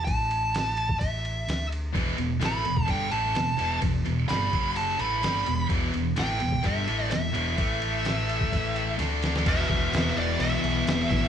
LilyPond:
<<
  \new Staff \with { instrumentName = "Lead electric guitar" } { \time 4/4 \key e \minor \tempo 4 = 128 a''2 e''4. r8 | r4 b''4 g''8 a''4. | r4 b''4 a''8 b''4. | r4 g''4 e''4 e''4~ |
e''2. r4 | e''4. d''8 e''2 | }
  \new Staff \with { instrumentName = "Tonewheel organ" } { \time 4/4 \key e \minor r1 | r1 | r1 | r1 |
r1 | <e b fis'>1 | }
  \new Staff \with { instrumentName = "Distorted electric guitar" } { \clef bass \time 4/4 \key e \minor r1 | <e, b, e>8 <e, b,>8 <a, e a>8 <e, b,>8 <g, d g>8 <a, e a>8 <e, b,>8 <e, b, e>8 | <e, b,>8 <e, b,>8 <g, d g>8 <fis, cis fis>4 <a, e a>8 <g, d g>8 <e, b,>8 | <e, b, e>8 <e, b,>8 <a, e a>8 <e, b,>8 <g, d g>8 <a, e a>8 <e, b,>8 <e, b, e>8 |
<a, e a>2. <d a d'>4 | <e, b, e>1 | }
  \new Staff \with { instrumentName = "Distorted electric guitar" } { \clef bass \time 4/4 \key e \minor r1 | <e, b, e>8 <e, b,>8 <a, e a>8 <e, b,>8 <g, d g>8 <a, e a>8 <e, b,>8 <e, b, e>8 | <e, b,>8 <e, b,>8 <g, d g>8 <fis, cis fis>4 <a, e a>8 <g, d g>8 <e, b,>8 | <e, b, e>8 <e, b,>8 <a, e a>8 <e, b,>8 <g, d g>8 <a, e a>8 <e, b,>8 <e, b, e>8 |
<a, e a>2. <d a d'>4 | <e, b, e>1 | }
  \new Staff \with { instrumentName = "Fingered electric bass" } { \clef bass \time 4/4 \key e \minor a,,2. d,4 | e,,8 e,,8 a,,8 e,,8 g,,8 a,,8 e,,8 e,,8 | e,,8 e,,8 g,,8 fis,,4 a,,8 g,,8 e,,8 | e,,8 e,,8 a,,8 e,,8 g,,8 a,,8 e,,8 e,,8 |
a,,2. d,4 | e,,8 e,,8 e,,8 e,,8 b,,8 b,,8 e,,8 a,,8 | }
  \new DrumStaff \with { instrumentName = "Drums" } \drummode { \time 4/4 <bd cymr>8 cymr8 <cymr sn>8 cymr16 bd16 <bd cymr>8 cymr8 <cymr sn>8 cymr8 | <bd cymr>8 cymr8 <cymr sn>8 cymr16 bd16 <bd cymr>8 cymr8 <cymr sn>8 cymr8 | <bd cymr>8 cymr8 <cymr sn>8 <bd cymr>8 cymr8 cymr8 <cymr sn>8 cymr8 | <bd cymr>8 cymr8 <cymr sn>8 cymr16 bd16 <bd cymr>8 cymr8 <cymr sn>8 cymr8 |
<bd cymr>8 cymr8 <cymr sn>8 cymr16 bd16 <bd cymr>8 cymr8 <cymr sn>8 <cymr sn>16 sn16 | <cymc bd>8 <cymc bd>8 <cymc sn>8 cymc8 cymc8 cymc8 <cymc sn>8 <cymc bd>8 | }
>>